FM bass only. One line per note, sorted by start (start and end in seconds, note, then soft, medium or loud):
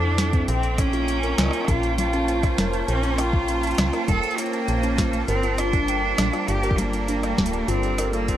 0.00 0.44 F2 medium
0.48 1.34 A#1 loud
1.38 1.51 C#2 loud
1.68 2.54 A#1 loud
2.58 2.83 F1 medium
2.88 3.74 A#1 loud
3.78 3.91 C#2 loud
4.08 4.21 F1 loud
4.68 5.24 A#1 medium
5.28 6.14 G1 loud
6.18 6.31 A#1 loud
6.49 7.34 G1 loud
7.38 7.63 D1 medium
7.68 8.37 G1 loud